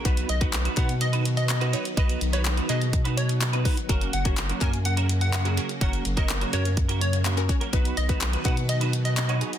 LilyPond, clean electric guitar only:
\new Staff \with { instrumentName = "Clean electric guitar" } { \time 4/4 \key b \lydian \tempo 4 = 125 <b dis' fis' b'>8 r16 <b dis' fis' b'>16 r16 <b dis' fis' b'>16 <b dis' fis' b'>16 r8 <b dis' fis' b'>16 r8. <b dis' fis' b'>16 <b dis' fis' b'>16 r16 | <b dis' fis' b'>8 r16 <b dis' fis' b'>16 r16 <b dis' fis' b'>16 <b dis' fis' b'>16 r8 <b dis' fis' b'>16 r8. <b dis' fis' b'>16 <b dis' fis' b'>16 r16 | <ais cis' fis' ais'>8 r16 <ais cis' fis' ais'>16 r16 <ais cis' fis' ais'>16 <ais cis' fis' ais'>16 r8 <ais cis' fis' ais'>16 r8. <ais cis' fis' ais'>16 <ais cis' fis' ais'>16 r16 | <ais cis' fis' ais'>8 r16 <ais cis' fis' ais'>16 r16 <ais cis' fis' ais'>16 <ais cis' fis' ais'>16 r8 <ais cis' fis' ais'>16 r8 <ais cis' fis' ais'>16 r8 <ais cis' fis' ais'>16 |
<b dis' fis' b'>8 r16 <b dis' fis' b'>16 r16 <b dis' fis' b'>16 <b dis' fis' b'>16 r8 <b dis' fis' b'>16 r8. <b dis' fis' b'>16 <b dis' fis' b'>16 r16 | }